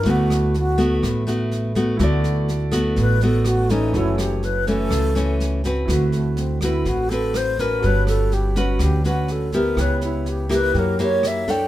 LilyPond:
<<
  \new Staff \with { instrumentName = "Grand piano" } { \time 4/4 \key d \major \tempo 4 = 123 <e' fis' a' b'>1 | <e' fis' a' d''>1 | <e' fis' a' cis''>1 | <e' fis' b'>1 |
<fis' a' b' cis''>1 | <e' g' b' cis''>2 <e' g' ais' cis''>2 | }
  \new Staff \with { instrumentName = "Alto flute" } { \time 4/4 \key d \major fis'4 fis'4 r2 | r2 b'8 a'8 fis'8 ees'8 | e'8 g'8 b'8 a'4. r4 | fis'8 a8 c'8 e'8 fis'8 a'8 c''8 bes'8 |
b'8 a'8 g'8 fis'8 g'8 fis'8 a'8 bes'8 | b'8 e'8 g'8 b'8 ais'8 cis''8 e''8 g''8 | }
  \new Staff \with { instrumentName = "Nylon-string guitar" } { \time 4/4 \key d \major << { <a b fis'>4 r8 <a b fis'>4 <a b fis'>4 <a b fis'>8 | <a b fis'>4 r8 <a b fis'>4 <a b fis'>4 <e a cis'>8~ | <e a cis'>4 r8 <e a cis'>4 <e a cis'>4 <c' fis' b'>8~ | <c' fis' b'>4. <c' fis' b'>4 <c' fis' b'>4 <cis' fis' b'>8~ |
<cis' fis' b'>4. <cis' fis' b'>4 <cis' fis' b'>4 <b e' g'>8~ | <b e' g'>4. <bes e' g'>4 <ais e' g'>4 <d' a' cis''>8 | } \\ { d2 a,2 | d2 a,2 | fis,2 cis2 | d2 a,2 |
g2 d2 | cis2 fis2 | } >> }
  \new Staff \with { instrumentName = "Upright bass" } { \clef bass \time 4/4 \key d \major d,2 a,,2 | d,2 a,,2 | fis,,2 cis,2 | d,2 a,,2 |
g,,2 d,2 | cis,2 fis,2 | }
  \new DrumStaff \with { instrumentName = "Drums" } \drummode { \time 4/4 <bd sn>8 <ss sn>8 sn8 <bd sn>8 <bd ss sn>8 sn8 sn8 <bd sn>8 | <bd ss sn>8 sn8 sn8 <bd ss sn>8 <bd sn>8 sn8 <ss sn>8 <bd sn>8 | <bd sn>8 <ss sn>8 sn8 <bd sn>8 <bd ss sn>8 sn8 sn8 <bd sn>8 | <bd ss sn>8 sn8 sn8 <bd ss sn>8 <bd sn>8 sn8 <ss sn>8 <bd sn>8 |
<bd sn>8 <ss sn>8 sn8 <bd sn>8 <bd ss sn>8 sn8 sn8 <bd sn>8 | <bd ss sn>8 sn8 sn8 <bd ss sn>8 <bd sn>8 sn8 <ss sn>8 <bd sn>8 | }
>>